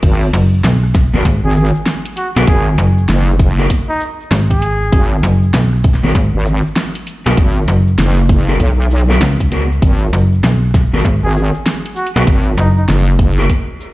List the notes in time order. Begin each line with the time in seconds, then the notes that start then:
0.03 G#1, kick, closed hi-hat, crash, shaker
0.33 F#1, closed hi-hat, shaker
0.53 shaker
0.64 B1, snare, closed hi-hat, shaker
0.83 cross-stick
0.94 kick, snare, closed hi-hat, shaker
1.14 G#1 B3 F#4 G#4 A#4, shaker
1.25 G#1, kick, closed hi-hat, shaker
1.44 G#1 G#4
1.55 G#4, shaker
1.75 shaker
1.85 snare, closed hi-hat, shaker
2.06 closed hi-hat
2.17 F#4, closed hi-hat, shaker
2.36 B1 B3 F#4 G#4 A#4, shaker
2.47 G#1 G#4, kick, closed hi-hat, shaker
2.78 F#1, closed hi-hat, shaker
2.98 shaker
3.09 F#1, snare, closed hi-hat, shaker
3.28 cross-stick
3.39 kick, closed hi-hat, shaker
3.58 B3 F#4 G#4 A#4, shaker
3.70 kick, closed hi-hat, shaker
3.89 D#4
4.01 shaker
4.20 shaker
4.31 G#1, snare, closed hi-hat, shaker
4.51 G#4, kick, closed hi-hat
4.62 closed hi-hat, shaker
4.82 shaker
4.92 G#1, kick, closed hi-hat, shaker
5.23 F#1, closed hi-hat, shaker
5.43 shaker
5.54 B1, snare, closed hi-hat, shaker
5.73 cross-stick
5.84 kick, closed hi-hat, shaker
5.94 snare
6.03 G#1 B3 F#4 G#4 A#4, shaker
6.15 G#1, kick, closed hi-hat, shaker
6.35 G#1
6.46 shaker
6.65 shaker
6.76 snare, closed hi-hat, shaker
6.95 closed hi-hat
7.07 closed hi-hat, shaker
7.26 B1 B3 F#4 G#4 A#4, cross-stick, shaker
7.37 G#1, kick, closed hi-hat, shaker
7.68 F#1, closed hi-hat, shaker
7.87 shaker
7.98 F#1, snare, closed hi-hat, shaker
8.18 cross-stick
8.26 kick, cross-stick, closed hi-hat
8.30 shaker
8.36 cross-stick
8.48 B3 F#4 G#4 A#4, shaker
8.60 B1, kick, closed hi-hat, shaker
8.91 shaker
9.10 B3 F#4 G#4 A#4, shaker
9.21 C#2, snare, closed hi-hat, shaker
9.40 kick, closed hi-hat
9.52 B3 F#4 G#4 A#4, closed hi-hat, shaker
9.72 shaker
9.82 G#1, kick, closed hi-hat, shaker
10.13 F#1, closed hi-hat, shaker
10.32 shaker
10.43 B1, snare, closed hi-hat, shaker
10.63 cross-stick
10.71 kick, cross-stick, snare, closed hi-hat, shaker
10.81 cross-stick
10.93 G#1 B3 F#4 G#4 A#4, shaker
11.05 G#1, kick, closed hi-hat, shaker
11.24 G#1 G#4
11.35 G#4, shaker
11.55 shaker
11.66 snare, closed hi-hat, shaker
11.86 closed hi-hat
11.96 F#4, shaker
12.07 closed hi-hat
12.15 B1 B3 F#4 G#4 A#4, cross-stick, shaker
12.27 G#1, kick, closed hi-hat, shaker
12.58 F#1 D#4, closed hi-hat, shaker
12.77 D#4, shaker
12.89 F#1, snare, closed hi-hat, shaker
13.08 cross-stick
13.19 kick, closed hi-hat, shaker
13.38 B3 F#4 G#4 A#4, shaker
13.49 kick, closed hi-hat, shaker
13.81 shaker